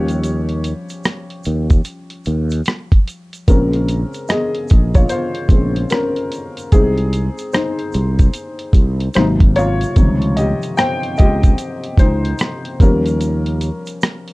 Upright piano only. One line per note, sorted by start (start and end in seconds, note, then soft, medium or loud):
0.00 1.01 F3 medium
0.00 1.01 G3 soft
0.00 1.01 C#4 medium
0.00 1.42 G4 medium
0.00 1.41 C#5 medium
3.48 4.06 C#3 medium
3.48 4.07 G#3 soft
3.48 4.07 C4 medium
3.48 4.26 C#4 medium
3.48 4.31 A#4 medium
4.29 4.92 G#4 medium
4.29 4.97 D#5 medium
4.95 5.10 F4 medium
4.95 5.09 C#5 medium
5.09 5.88 F4 medium
5.09 5.93 C5 medium
5.52 5.88 C#3 soft
5.52 5.88 G#3 soft
5.52 5.88 C4 soft
5.91 6.69 C#4 medium
5.91 6.74 A#4 medium
6.72 7.91 G#3 soft
6.72 7.50 C4 medium
6.72 7.54 D#4 medium
6.72 7.90 G4 medium
6.72 7.56 G#4 medium
7.53 9.12 D#4 medium
7.53 9.14 C5 medium
9.15 9.93 C3 medium
9.15 9.93 F#3 medium
9.15 9.93 A#3 soft
9.15 9.26 D#4 medium
9.15 9.24 C5 medium
9.56 10.34 F4 medium
9.56 10.39 C#5 loud
9.97 10.55 C3 medium
9.97 10.55 D#3 medium
9.97 10.55 F3 soft
9.97 10.55 G3 soft
10.36 10.76 G4 medium
10.36 10.78 D#5 medium
10.77 11.16 C5 medium
10.77 11.19 G5 loud
11.18 11.96 G4 medium
11.18 12.01 D#5 medium
11.99 12.77 D#4 medium
11.99 12.83 C5 medium
12.81 13.39 F3 medium
12.81 13.39 G3 medium
12.81 14.33 C#4 medium
12.81 14.33 A#4 medium